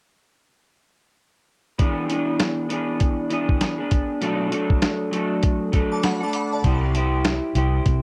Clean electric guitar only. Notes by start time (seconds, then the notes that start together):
1.79 E3 B3 D4 G#4
2.09 E3 B3 D4 G#4
2.69 E3 B3 D4
2.73 G#4
3.30 E3 B3 D4 G#4
3.78 B3 D4 G#4
4.21 B2 F#3 A3 D4 A4
4.50 F#3 A3 D4 A4
5.11 F#3 A3 D4
5.15 A4
5.72 F#3 A3 D4 A4
6.20 A3 D4 A4
6.64 C3 G3 E4 G4 C5
6.96 E4 G4 C5
7.55 E4 G4 C5